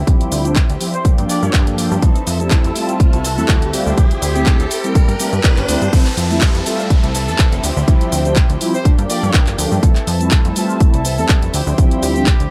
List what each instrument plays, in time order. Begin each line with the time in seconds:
Already playing: string section F3 C5 E5 G5, riser
0.07 analog synth bass D2, clean electric guitar F3 C4 E4 G4, analog polysynth F3 G3 C4 E4, kick, closed hi-hat, shaker
0.21 analog synth bass D2, closed hi-hat, shaker
0.32 analog synth bass D2, open hi-hat, shaker
0.44 analog polysynth F3 G3 C4 D4, clean electric guitar C4 E4 G4, closed hi-hat, shaker
0.56 clean electric guitar F3 C4 E4 G4, kick, clap, closed hi-hat, shaker
0.69 analog synth bass D2, clean electric guitar C4 E4 G4, closed hi-hat, shaker
0.80 analog polysynth F3 G3 C4 E4, open hi-hat, shaker
0.94 horn section C5, closed hi-hat, shaker
1.04 analog polysynth F3 A#3 D4 A4, clean electric guitar F3 A#3 D4 G4, string section G4 F5 G5, kick, closed hi-hat, shaker
1.18 analog synth bass G2, clean electric guitar A#3 D4 G4, closed hi-hat, shaker
1.29 clean electric guitar F3 A#3 D4 G4, horn section D5, open hi-hat, shaker
1.42 analog synth bass G2, clean electric guitar A#3 D4 G4, shaker
1.53 analog synth bass G2, clean electric guitar F3 A#3 D4 G4, kick, clap, closed hi-hat, shaker
1.67 analog polysynth F3 A#3 D4 A4, closed hi-hat, shaker
1.78 analog synth bass G2, clean electric guitar F3 A#3 D4 G4, open hi-hat, shaker
1.91 analog synth bass G2, clean electric guitar A#3 D4 G4, shaker
2.02 analog synth bass F2, clean electric guitar E3 C4 E4 A4, analog polysynth G3 A3 C4 E4, string section E5 A5, kick, closed hi-hat, shaker
2.16 closed hi-hat, shaker
2.27 analog synth bass F2, open hi-hat, shaker
2.40 analog polysynth G3 A3 C4 E4, clean electric guitar C4 E4 A4, closed hi-hat, shaker
2.51 clean electric guitar E3 C4 E4 A4, kick, clap, closed hi-hat, shaker
2.64 analog synth bass F2, clean electric guitar C4 E4 A4, closed hi-hat, shaker
2.75 analog polysynth G3 A3 C4 F4, open hi-hat, shaker
2.89 closed hi-hat, shaker
3.00 analog synth bass C2, analog polysynth G3 A3 C4 E4, kick, closed hi-hat, shaker
3.13 analog synth bass C2, clean electric guitar C4 E4 A4, closed hi-hat, shaker
3.24 clean electric guitar E3 C4 E4 A4, open hi-hat, shaker
3.37 analog synth bass F2, analog polysynth G3 A3 C4 E4, clean electric guitar C4 E4 A4, horn section A4, shaker
3.48 analog synth bass D2, clean electric guitar E3 C4 E4 A4, kick, clap, closed hi-hat, shaker
3.62 closed hi-hat, shaker
3.72 analog synth bass D2, clean electric guitar F3 C4 E4 G4, analog polysynth G3 A3 C4 F4, string section C5 G5, open hi-hat, shaker
3.86 analog synth bass D2, clean electric guitar C4 E4 G4, shaker
3.97 analog synth bass D2, clean electric guitar F3 C4 E4 G4, analog polysynth G3 A3 C4 E4, kick, closed hi-hat, shaker
4.11 analog synth bass D2, closed hi-hat, shaker
4.21 analog synth bass D2, clean electric guitar F3 C4 E4 G4, horn section G4, open hi-hat, shaker
4.35 analog polysynth G3 A3 C4 E4, clean electric guitar C4 E4 G4, closed hi-hat, shaker
4.46 clean electric guitar F3 C4 E4 G4, analog polysynth G3 A3 C4 E4, kick, clap, closed hi-hat, shaker
4.59 analog synth bass D2, clean electric guitar C4 E4 G4, closed hi-hat, shaker
4.71 open hi-hat, shaker
4.84 analog polysynth G3 A3 C4 E4, closed hi-hat, shaker
4.95 clean electric guitar F3 A#3 D4 G4, analog polysynth G3 A3 C4 E4, string section A#4, kick, closed hi-hat, shaker
5.08 analog synth bass G2, clean electric guitar A#3 D4 G4, closed hi-hat, shaker
5.19 clean electric guitar F3 A#3 D4 G4, analog polysynth G3 A3 C4 E4, open hi-hat, shaker
5.32 analog synth bass G2, clean electric guitar A#3 D4 G4, closed hi-hat, shaker
5.44 clean electric guitar F3 A#3 D4 G4, analog polysynth G3 A3 C4 E4, kick, clap, closed hi-hat, shaker
5.57 analog synth bass G1, horn section D4, clap, closed hi-hat, shaker
5.68 analog synth bass D2, clean electric guitar F3 A#3 D4 G4, analog polysynth G3 A3 C4 E4, open hi-hat, shaker
5.81 analog synth bass G2, clean electric guitar A#3 D4 G4, closed hi-hat, shaker
5.92 analog synth bass F2, clean electric guitar E3 C4 E4 A4, analog polysynth G3 A3 C4 E4, string section E5 A5, kick, closed hi-hat, crash, downlifter, shaker
6.06 clap, closed hi-hat, shaker
6.17 analog synth bass F2, open hi-hat, shaker
6.30 analog polysynth G3 A3 C4 E4, closed hi-hat, shaker
6.41 clean electric guitar E3 C4 E4 A4, kick, clap, closed hi-hat, shaker
6.55 analog synth bass F2, closed hi-hat, shaker
6.65 clean electric guitar E3 C4 E4 A4, analog polysynth G3 A3 C4 F4, open hi-hat, shaker
6.79 clean electric guitar C4 E4 A4, shaker
6.90 analog synth bass C2, analog polysynth G3 A3 C4 E4, kick, closed hi-hat, shaker
7.03 analog synth bass C2, clean electric guitar C4 E4 A4, closed hi-hat, shaker
7.14 clean electric guitar E3 C4 E4 A4, open hi-hat, shaker
7.28 analog synth bass F2, analog polysynth G3 A3 C4, horn section A4, shaker
7.39 clean electric guitar E3 C4 E4 A4, kick, clap, closed hi-hat, shaker
7.52 analog synth bass F1, closed hi-hat, shaker
7.63 analog synth bass D2, clean electric guitar F3 C4 E4 G4, string section F3 C5 G5, open hi-hat, shaker
7.76 analog synth bass D2, clean electric guitar C4 E4 G4, shaker
7.87 analog synth bass D2, clean electric guitar F3 C4 E4 G4, analog polysynth F3 G3 C4 E4, kick, closed hi-hat, shaker
8.01 analog synth bass D2, closed hi-hat, shaker
8.12 analog synth bass D2, open hi-hat, shaker
8.25 analog polysynth F3 G3 C4 D4, closed hi-hat, shaker
8.36 clean electric guitar F3 C4 E4 G4, kick, clap, closed hi-hat, shaker
8.50 analog synth bass D2, closed hi-hat, shaker
8.60 clean electric guitar F3 C4 E4 G4, analog polysynth F3 G3 C4 E4, open hi-hat, shaker
8.74 horn section C5, shaker
8.84 analog polysynth F3 A#3 D4 A4, clean electric guitar F3 A#3 D4 G4, string section G4 F5 G5, kick, closed hi-hat, shaker
8.98 analog synth bass G2, clean electric guitar A#3 D4 G4, closed hi-hat, shaker
9.09 clean electric guitar F3 A#3 D4 G4, horn section D5, open hi-hat, shaker
9.23 analog synth bass G2, shaker
9.34 clean electric guitar F3 A#3 D4 G4, kick, clap, closed hi-hat, shaker
9.47 analog synth bass G1, clap, closed hi-hat, shaker
9.58 analog synth bass D2, clean electric guitar F3 A#3 D4 G4, analog polysynth F3 A3 A#3 D4, open hi-hat, shaker
9.71 analog synth bass G2, clean electric guitar A#3 D4 G4, shaker
9.83 analog synth bass F2, clean electric guitar E3 C4 E4 A4, analog polysynth G3 A3 C4 E4, string section E5 A5, kick, closed hi-hat, shaker
9.96 clap, closed hi-hat, shaker
10.07 analog synth bass F2, open hi-hat, shaker
10.20 analog polysynth G3 A3 C4 E4, closed hi-hat, shaker
10.31 clean electric guitar E3 C4 E4 A4, kick, clap, closed hi-hat, shaker
10.45 analog synth bass F2, closed hi-hat, shaker
10.56 clean electric guitar E3 C4 E4 A4, analog polysynth G3 A3 C4 F4, open hi-hat, shaker
10.69 shaker
10.80 analog synth bass C2, analog polysynth G3 A3 C4 E4, kick, closed hi-hat, shaker
10.93 analog synth bass C2, clean electric guitar C4 E4 A4, closed hi-hat, shaker
11.04 clean electric guitar E3 C4 E4 A4, open hi-hat, shaker
11.18 analog synth bass F2, analog polysynth G3 A3 C4, horn section A4, shaker
11.29 clean electric guitar E3 C4 E4 A4, kick, clap, closed hi-hat, shaker
11.42 analog synth bass F1, closed hi-hat, shaker
11.53 analog synth bass D2, clean electric guitar F3 C4 E4 G4, string section F3 C5 G5, open hi-hat, shaker
11.66 analog synth bass D2, clean electric guitar C4 E4 G4, shaker
11.78 analog synth bass D2, clean electric guitar F3 C4 E4 G4, analog polysynth F3 G3 C4 E4, kick, closed hi-hat, shaker
11.91 analog synth bass D2, closed hi-hat, shaker
12.03 analog synth bass D2, horn section G4, open hi-hat, shaker
12.15 analog polysynth F3 G3 C4 D4, closed hi-hat, shaker
12.26 clean electric guitar F3 C4 E4 G4, kick, clap, closed hi-hat, shaker
12.40 analog synth bass D2, closed hi-hat, shaker